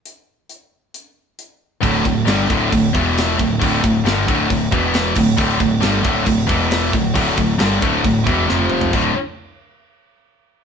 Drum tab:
CC |----------------|x-x-x-x-x-x-x-x-|x-x-x-x-x-x-x-x-|x-x-x-x-x-x-x-x-|
HH |x---x---x---x---|----------------|----------------|----------------|
SD |----------------|----o-------o---|----o-------o---|----o-------o---|
T1 |----------------|----------------|----------------|----------------|
T2 |----------------|----------------|----------------|----------------|
FT |----------------|----------------|----------------|----------------|
BD |----------------|o-o---o-o-o---o-|o-o---o-o-o---o-|o-o---o-o-o---o-|

CC |x-x-x-x-x-x-----|x---------------|
HH |----------------|----------------|
SD |----o-------o---|----------------|
T1 |-------------o--|----------------|
T2 |--------------o-|----------------|
FT |---------------o|----------------|
BD |o-o---o-o-o-----|o---------------|